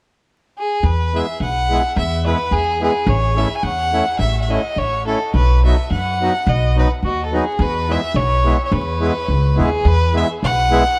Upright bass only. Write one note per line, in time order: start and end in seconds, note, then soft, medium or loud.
0.83 1.20 E2 medium
1.40 1.77 B1 medium
1.96 2.32 E2 medium
2.51 2.87 E2 medium
3.07 3.43 A1 medium
3.63 4.00 E2 medium
4.19 4.56 A1 medium
4.76 5.13 A1 medium
5.34 5.71 B1 medium
5.91 6.27 F#2 medium
6.47 6.83 B1 medium
7.03 7.39 D#2 medium
7.59 7.95 E2 medium
8.14 8.51 B1 medium
8.71 9.09 E2 medium
9.28 9.56 C#2 medium
9.59 9.83 D#2 medium
9.85 10.22 E2 medium
10.43 10.79 B1 medium